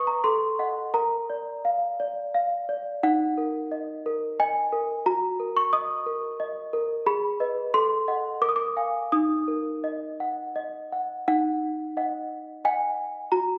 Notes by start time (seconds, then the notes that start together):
Already playing: G#4 B4 D#5 B5 C#6 D#6
0.07 A#5
0.24 A4 C6
0.59 D#5 F#5
0.94 A#4 A#5
1.30 D5
1.65 F5
2.00 D5
2.35 F5
2.69 D5
3.03 D#4 F#5
3.38 A#4
3.72 D#5
4.06 A#4
4.40 D#5 G#5
4.72 A#4
5.06 F#4 A#5
5.40 A#4
5.57 C#6
5.73 D#5 D#6
6.06 A#4
6.40 D#5
6.73 A#4
7.06 G#4 B5
7.40 B4 D#5
7.74 A4 C6
8.08 D#5 F#5
8.42 A#4 D6
8.49 D#6
8.56 D6
8.77 F5 G#5
9.12 D#4 D#6
9.48 A#4
9.84 D#5
10.20 F#5
10.56 D#5
10.92 F#5
11.28 D#4 F#5
11.97 D#5 F#5
12.65 D#5 F#5 G#5
13.32 F#4 A#5